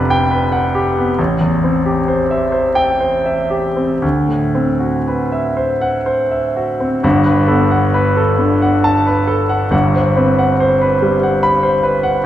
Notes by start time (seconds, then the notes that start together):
Already playing: F1 F2 D3 B3 G4 B4 D5 F#5
0.10 G5
0.31 B4
0.52 F#5
0.75 G4
0.97 B3
1.19 A1
1.41 E2
1.64 C4
1.86 G4
2.08 C5
2.31 E5
2.52 C5
2.75 G5
3.00 C5
3.26 E5
3.50 G4
3.77 C4
4.02 D2
4.29 A2
4.55 C4
4.80 F#4
5.08 B4
5.32 E5
5.57 C5
5.81 F#5
6.06 C5
6.31 E5
6.57 F#4
6.80 C4
7.03 G1 G2 F#5
7.26 B4
7.48 B3 A4
7.71 F#5
7.94 B4
8.17 A4
8.39 D3
8.62 F#5
8.84 A5
9.07 B4
9.27 A4
9.49 F#5
9.70 G1 G2 F#5
9.94 C5
10.16 C4 B4
10.39 F#5
10.60 C5
10.81 B4
11.02 G3
11.23 F#5
11.43 B5
11.63 C5
11.83 B4
12.03 F#5